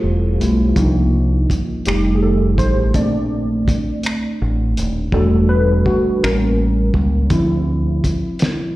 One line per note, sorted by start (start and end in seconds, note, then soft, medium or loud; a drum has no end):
0.00 0.36 E1 medium
0.00 0.41 G3 medium
0.00 0.41 A3 soft
0.00 0.41 E4 medium
0.00 1.45 F4 medium
0.00 0.78 G4 medium
0.00 0.78 A4 medium
0.00 0.77 C5 medium
0.41 0.73 B1 medium
0.41 0.73 G3 soft
0.41 0.73 A3 soft
0.41 0.73 E4 medium
0.41 closed hi-hat medium
0.76 1.45 C2 loud
0.76 1.82 F3 medium
0.76 1.82 A#3 soft
0.76 1.82 D4 soft
0.76 1.82 D#4 medium
0.76 kick loud
0.76 closed hi-hat medium
1.50 kick medium
1.50 closed hi-hat medium
1.85 2.59 F1 medium
1.85 2.91 G3 medium
1.85 2.91 A3 soft
1.85 2.91 D#4 medium
1.85 2.13 G4 medium
1.85 finger snap loud
1.85 closed hi-hat medium
2.15 2.22 G#4 medium
2.23 2.60 A4 medium
2.58 2.91 A1 medium
2.58 2.92 C5 medium
2.58 kick medium
2.58 closed hi-hat medium
2.94 3.63 A#1 medium
2.94 3.42 A3 medium
2.94 3.43 C4 medium
2.94 3.43 D4 medium
2.94 3.64 D5 medium
2.94 kick loud
2.94 closed hi-hat medium
3.68 muted fingered electric bass stroke soft
3.68 kick medium
3.68 closed hi-hat medium
4.03 finger snap loud
4.03 closed hi-hat medium
4.42 4.74 A1 medium
4.77 5.10 D#1 medium
4.77 closed hi-hat medium
5.12 5.82 E1 loud
5.12 6.18 G3 medium
5.12 6.18 A3 medium
5.12 6.18 D4 medium
5.12 5.85 F#4 medium
5.12 5.51 A4 loud
5.12 kick loud
5.49 5.86 B4 medium
5.86 6.20 F#4 medium
5.86 kick medium
6.23 6.91 A1 loud
6.23 6.71 G3 soft
6.23 6.71 A#3 soft
6.23 6.71 C#4 medium
6.23 6.91 A#4 medium
6.23 finger snap loud
6.94 7.27 C#2 medium
6.94 kick medium
7.30 7.99 D2 loud
7.30 8.76 F3 medium
7.30 8.76 C4 medium
7.30 8.76 E4 medium
7.30 kick loud
7.30 closed hi-hat medium
8.04 muted fingered electric bass stroke soft
8.04 kick medium
8.04 closed hi-hat medium
8.39 snare loud
8.39 closed hi-hat medium